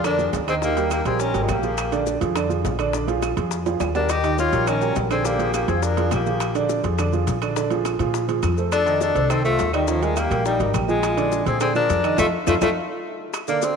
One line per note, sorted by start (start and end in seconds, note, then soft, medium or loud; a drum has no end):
0.00 0.30 F2 medium
0.00 0.16 D3 medium
0.04 0.16 D4 medium
0.04 0.32 D4 medium
0.04 0.31 A#4 medium
0.04 0.16 D5 medium
0.04 high bongo medium
0.04 high timbale medium
0.04 claves medium
0.04 maracas medium
0.18 0.42 F3 medium
0.18 0.42 F4 medium
0.18 0.42 G#4 medium
0.18 maracas soft
0.33 1.00 D#2 medium
0.33 high bongo soft
0.33 low bongo medium
0.33 high timbale medium
0.33 low timbale medium
0.33 maracas medium
0.47 0.59 D#3 medium
0.47 0.55 C4 medium
0.47 0.60 D#4 medium
0.47 0.54 G#4 medium
0.47 0.60 D#5 medium
0.47 high bongo soft
0.47 high timbale medium
0.47 claves medium
0.47 maracas soft
0.62 0.74 D#3 medium
0.62 0.90 A#3 medium
0.62 0.74 D#4 medium
0.62 0.89 G4 medium
0.62 0.74 D#5 medium
0.62 high bongo medium
0.62 maracas medium
0.77 1.00 G3 medium
0.77 1.00 G4 medium
0.77 1.01 A#4 medium
0.77 high bongo soft
0.77 high timbale medium
0.77 maracas soft
0.91 1.05 A#3 medium
0.91 1.05 G4 medium
0.91 high bongo medium
0.91 high timbale medium
0.91 claves medium
0.91 maracas medium
1.05 1.32 A#1 medium
1.05 1.29 G3 medium
1.05 1.22 C4 medium
1.05 1.29 G4 medium
1.05 1.22 G#4 medium
1.05 1.30 A#4 medium
1.05 high bongo soft
1.05 high timbale medium
1.05 maracas soft
1.20 1.44 C#4 medium
1.20 1.44 A#4 medium
1.20 high bongo medium
1.20 maracas medium
1.34 1.48 G#1 medium
1.34 1.58 G3 medium
1.34 1.58 G4 medium
1.34 1.58 A#4 medium
1.34 high timbale medium
1.34 maracas soft
1.43 1.52 G#3 soft
1.43 1.51 F4 soft
1.49 2.16 A#1 medium
1.49 2.07 A#3 medium
1.49 2.07 G4 medium
1.49 high bongo soft
1.49 low bongo medium
1.49 high timbale medium
1.49 low timbale medium
1.49 claves medium
1.49 maracas medium
1.63 1.87 F3 medium
1.63 1.87 F4 medium
1.63 1.87 G#4 medium
1.63 high bongo soft
1.63 maracas soft
1.78 high bongo medium
1.78 high timbale medium
1.78 claves medium
1.78 maracas medium
1.92 2.16 D3 medium
1.92 2.16 D4 medium
1.92 2.16 D5 medium
1.92 high bongo soft
1.92 high timbale medium
1.92 maracas soft
2.06 high bongo medium
2.06 maracas medium
2.21 2.62 F2 medium
2.21 2.33 F3 medium
2.21 2.33 F4 medium
2.21 2.33 G#4 medium
2.21 high bongo soft
2.21 high timbale medium
2.21 maracas soft
2.35 2.47 D3 medium
2.35 2.48 D4 medium
2.35 2.48 D5 medium
2.35 high bongo medium
2.35 high timbale medium
2.35 claves medium
2.35 maracas medium
2.49 2.73 F3 medium
2.49 2.74 F4 medium
2.49 2.74 G#4 medium
2.49 maracas soft
2.65 3.32 A#1 medium
2.65 high bongo soft
2.65 low bongo medium
2.65 high timbale medium
2.65 low timbale medium
2.65 maracas medium
2.79 2.91 D3 medium
2.79 2.91 D4 medium
2.79 2.91 D5 medium
2.79 high bongo soft
2.79 high timbale medium
2.79 claves medium
2.79 maracas soft
2.93 3.05 D3 medium
2.93 3.06 D4 medium
2.93 3.06 D5 medium
2.93 high bongo medium
2.93 maracas medium
3.07 3.31 F3 medium
3.07 3.32 F4 medium
3.07 3.32 G#4 medium
3.07 high bongo soft
3.07 high timbale medium
3.07 maracas soft
3.22 high bongo medium
3.22 high timbale medium
3.22 claves medium
3.22 maracas medium
3.37 3.77 F2 medium
3.37 3.61 F3 medium
3.37 3.61 F4 medium
3.37 3.61 G#4 medium
3.37 high bongo soft
3.37 high timbale medium
3.37 maracas soft
3.51 high bongo medium
3.51 maracas medium
3.66 3.90 F3 medium
3.66 3.90 F4 medium
3.66 3.90 G#4 medium
3.66 high timbale medium
3.66 maracas soft
3.80 4.47 D#2 medium
3.80 high bongo soft
3.80 low bongo medium
3.80 high timbale loud
3.80 claves medium
3.80 maracas medium
3.95 4.18 G3 medium
3.95 4.13 D4 medium
3.95 4.19 G4 medium
3.95 4.19 A#4 medium
3.95 4.11 A#4 medium
3.95 high bongo soft
3.95 low timbale medium
3.95 maracas soft
4.09 4.39 G4 loud
4.09 4.37 D#5 medium
4.09 high bongo medium
4.09 high timbale medium
4.09 claves medium
4.09 maracas medium
4.24 4.47 D#3 medium
4.24 4.48 D#4 medium
4.24 4.48 D#5 medium
4.24 high bongo soft
4.24 high timbale medium
4.24 maracas soft
4.38 4.70 F4 medium
4.38 4.69 C#5 medium
4.38 high bongo medium
4.38 maracas medium
4.53 4.93 A#1 medium
4.53 4.64 G3 medium
4.53 4.65 G4 medium
4.53 4.65 A#4 medium
4.53 high bongo soft
4.53 high timbale medium
4.53 maracas soft
4.67 4.79 D#3 medium
4.67 4.97 C#4 medium
4.67 4.79 D#4 medium
4.67 4.96 A#4 medium
4.67 4.79 D#5 medium
4.67 high bongo medium
4.67 high timbale medium
4.67 claves medium
4.67 maracas medium
4.81 5.05 G3 medium
4.81 5.05 G4 medium
4.81 5.06 A#4 medium
4.81 maracas soft
4.96 5.63 A#1 medium
4.96 high bongo soft
4.96 low bongo medium
4.96 high timbale medium
4.96 low timbale medium
4.96 maracas medium
5.10 5.22 D3 medium
5.10 5.27 C4 medium
5.10 5.23 D4 medium
5.10 5.27 G#4 medium
5.10 5.23 D5 medium
5.10 high bongo soft
5.10 high timbale medium
5.10 claves medium
5.10 maracas soft
5.24 5.37 D3 medium
5.24 5.54 A#3 medium
5.24 5.37 D4 medium
5.24 5.54 G4 medium
5.24 5.37 D5 medium
5.24 high bongo medium
5.24 maracas medium
5.39 5.63 F3 medium
5.39 5.63 F4 medium
5.39 5.63 G#4 medium
5.39 high bongo soft
5.39 high timbale medium
5.39 maracas soft
5.54 5.70 A#3 medium
5.54 5.70 G4 medium
5.54 high bongo medium
5.54 high timbale medium
5.54 claves medium
5.54 maracas medium
5.68 6.09 F2 medium
5.68 5.92 F3 medium
5.68 5.85 C4 medium
5.68 5.92 F4 medium
5.68 5.92 G#4 medium
5.68 5.85 G#4 medium
5.68 high bongo soft
5.68 high timbale medium
5.68 maracas soft
5.83 6.12 D4 medium
5.83 6.12 A#4 medium
5.83 high bongo medium
5.83 maracas medium
5.97 6.21 F3 medium
5.97 6.21 F4 medium
5.97 6.21 G#4 medium
5.97 high timbale medium
5.97 maracas soft
6.11 6.79 A#1 medium
6.11 6.66 A#3 medium
6.11 6.66 G4 medium
6.11 high bongo soft
6.11 low bongo medium
6.11 high timbale medium
6.11 low timbale medium
6.11 claves medium
6.11 maracas medium
6.26 6.50 F3 medium
6.26 6.50 F4 medium
6.26 6.50 G#4 medium
6.26 high bongo soft
6.26 maracas soft
6.40 high bongo medium
6.40 high timbale medium
6.40 claves medium
6.40 maracas medium
6.55 6.79 D3 medium
6.55 6.79 D4 medium
6.55 6.79 D5 medium
6.55 high bongo soft
6.55 high timbale medium
6.55 maracas soft
6.69 high bongo medium
6.69 maracas medium
6.83 7.24 F2 medium
6.83 6.96 F3 medium
6.83 6.96 F4 medium
6.83 6.96 G#4 medium
6.83 high bongo soft
6.83 high timbale medium
6.83 maracas soft
6.98 7.10 D3 medium
6.98 7.11 D4 medium
6.98 7.11 D5 medium
6.98 high bongo medium
6.98 high timbale medium
6.98 claves medium
6.98 maracas medium
7.13 7.37 F3 medium
7.13 7.37 F4 medium
7.13 7.37 G#4 medium
7.13 maracas soft
7.27 7.94 A#1 medium
7.27 high bongo soft
7.27 low bongo medium
7.27 high timbale medium
7.27 maracas medium
7.42 7.54 D3 medium
7.42 7.54 D4 medium
7.42 7.54 D5 medium
7.42 high bongo soft
7.42 high timbale medium
7.42 claves medium
7.42 maracas soft
7.56 7.68 D3 medium
7.56 7.69 D4 medium
7.56 7.69 D5 medium
7.56 high bongo medium
7.56 maracas medium
7.70 7.94 F3 medium
7.70 7.95 F4 medium
7.70 7.95 G#4 medium
7.70 high bongo soft
7.70 high timbale medium
7.70 maracas soft
7.85 high bongo medium
7.85 high timbale medium
7.85 claves medium
7.85 maracas medium
7.99 8.40 A#2 medium
7.99 8.24 F3 medium
7.99 8.24 F4 medium
7.99 8.24 G#4 medium
7.99 high bongo soft
7.99 high timbale medium
7.99 maracas soft
8.14 high bongo medium
8.14 maracas medium
8.28 8.52 F3 medium
8.28 8.52 F4 medium
8.28 8.53 G#4 medium
8.28 high timbale medium
8.28 maracas soft
8.43 9.10 F2 medium
8.43 high bongo soft
8.43 low bongo medium
8.43 high timbale medium
8.43 claves medium
8.43 maracas medium
8.57 8.81 A3 medium
8.57 8.82 A4 medium
8.57 8.82 C5 medium
8.57 high bongo soft
8.57 maracas soft
8.72 8.99 D4 loud
8.72 8.99 A4 medium
8.72 high bongo medium
8.72 high timbale medium
8.72 claves medium
8.72 maracas medium
8.86 9.10 D#3 medium
8.86 9.10 D#4 medium
8.86 9.10 D#5 medium
8.86 high bongo soft
8.86 high timbale medium
8.86 maracas soft
9.01 9.32 D4 medium
9.01 9.31 A4 medium
9.01 high bongo medium
9.01 maracas medium
9.15 9.56 C2 medium
9.15 9.27 A3 medium
9.15 9.27 A4 medium
9.15 9.27 C5 medium
9.15 high bongo soft
9.15 high timbale medium
9.15 maracas soft
9.30 9.42 D#3 medium
9.30 9.45 C4 medium
9.30 9.42 D#4 medium
9.30 9.44 A4 medium
9.30 9.42 D#5 medium
9.30 high bongo medium
9.30 high timbale medium
9.30 claves medium
9.30 maracas medium
9.44 9.68 A3 medium
9.44 9.72 A3 loud
9.44 9.71 F4 medium
9.44 9.68 A4 medium
9.44 9.68 C5 medium
9.44 maracas soft
9.59 10.26 D#2 medium
9.59 high bongo soft
9.59 low bongo medium
9.59 high timbale medium
9.59 low timbale medium
9.59 maracas medium
9.73 9.85 D#3 medium
9.73 9.91 G3 medium
9.73 9.89 D#4 medium
9.73 9.85 D#4 medium
9.73 9.85 D#5 medium
9.73 high bongo soft
9.73 high timbale medium
9.73 claves medium
9.73 maracas soft
9.87 9.99 D#3 medium
9.87 10.05 F3 medium
9.87 10.03 C#4 medium
9.87 9.99 D#4 medium
9.87 10.00 D#5 medium
9.87 high bongo medium
9.87 maracas medium
10.02 10.26 G3 medium
10.02 10.19 G#3 medium
10.02 10.18 F4 medium
10.02 10.26 G4 medium
10.02 10.26 A#4 medium
10.02 high bongo soft
10.02 high timbale medium
10.02 maracas soft
10.16 10.45 A#3 medium
10.16 10.45 G4 medium
10.16 high bongo medium
10.16 high timbale medium
10.16 claves medium
10.16 maracas medium
10.31 10.58 A#1 medium
10.31 10.54 G3 medium
10.31 10.55 G4 medium
10.31 10.55 A#4 medium
10.31 high bongo soft
10.31 high timbale medium
10.31 maracas soft
10.45 10.73 G3 medium
10.45 10.72 D#4 medium
10.45 high bongo medium
10.45 maracas medium
10.60 10.73 G#1 medium
10.60 10.84 G3 medium
10.60 10.84 G4 medium
10.60 10.84 A#4 medium
10.60 high timbale medium
10.60 maracas soft
10.74 11.41 A#1 medium
10.74 high bongo soft
10.74 low bongo medium
10.74 high timbale medium
10.74 claves medium
10.74 maracas medium
10.88 11.12 F3 medium
10.88 11.43 G#3 medium
10.88 11.12 F4 medium
10.88 11.43 F4 medium
10.88 11.12 G#4 medium
10.88 high bongo soft
10.88 maracas soft
11.03 high bongo medium
11.03 high timbale medium
11.03 claves medium
11.03 maracas medium
11.17 11.41 D3 medium
11.17 11.41 D4 medium
11.17 11.41 D5 medium
11.17 high bongo soft
11.17 high timbale medium
11.17 maracas soft
11.32 high bongo medium
11.32 maracas medium
11.46 11.87 A#2 medium
11.46 11.58 F3 medium
11.46 11.60 C4 medium
11.46 11.58 F4 medium
11.46 11.60 G#4 medium
11.46 11.58 G#4 medium
11.46 high bongo soft
11.46 high timbale medium
11.46 maracas soft
11.60 11.72 D3 medium
11.60 11.75 C4 loud
11.60 11.73 D4 medium
11.60 11.74 G#4 medium
11.60 11.73 D5 medium
11.60 high bongo medium
11.60 high timbale medium
11.60 claves medium
11.60 maracas medium
11.75 11.99 F3 medium
11.75 12.16 D4 medium
11.75 11.99 F4 medium
11.75 11.99 G#4 medium
11.75 12.16 A#4 medium
11.75 maracas soft
11.89 12.16 F2 medium
11.89 high bongo soft
11.89 low bongo medium
11.89 high timbale medium
11.89 maracas medium
12.04 12.16 D#3 medium
12.04 12.16 D#4 medium
12.04 12.16 D#5 medium
12.04 high bongo soft
12.04 high timbale medium
12.04 claves medium
12.04 maracas soft
12.17 12.29 F2 loud
12.17 12.26 A3 medium
12.17 12.27 D#4 medium
12.17 12.27 F4 medium
12.17 12.28 F4 medium
12.17 12.27 A4 medium
12.17 low bongo loud
12.17 high timbale loud
12.17 claves loud
12.17 maracas loud
12.47 12.58 F2 medium
12.47 12.55 A3 medium
12.47 12.56 D#4 medium
12.47 12.56 F4 medium
12.47 12.57 F4 loud
12.47 12.56 A4 medium
12.47 low bongo loud
12.47 high timbale medium
12.47 claves loud
12.47 maracas loud
12.61 12.72 F2 medium
12.61 12.69 A3 medium
12.61 12.71 D#4 medium
12.61 12.71 F4 medium
12.61 12.71 A4 medium
12.61 low bongo loud
12.61 high timbale loud
12.61 claves loud
12.61 maracas medium
13.33 high bongo medium
13.33 high timbale medium
13.33 claves medium
13.33 maracas medium
13.48 13.72 D3 medium
13.48 13.65 A#3 medium
13.48 13.72 D4 medium
13.48 13.72 D5 medium
13.48 high bongo soft
13.48 maracas medium
13.62 13.76 C4 medium
13.62 high bongo medium
13.62 high timbale medium
13.62 maracas medium